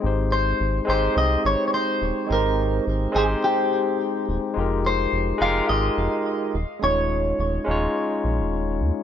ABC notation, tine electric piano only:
X:1
M:4/4
L:1/8
Q:"Swing 16ths" 1/4=106
K:Ab
V:1 name="Tine electric piano"
[A,CEGc]3 [A,CEGc]4- [A,CEGc] | [A,CEGc]3 [A,CEGc]4- [A,CEGc] | [A,EFGB]3 [A,EFGB]4 z | [A,DEFd]3 [A,DEFd]4- [A,DEFd] |]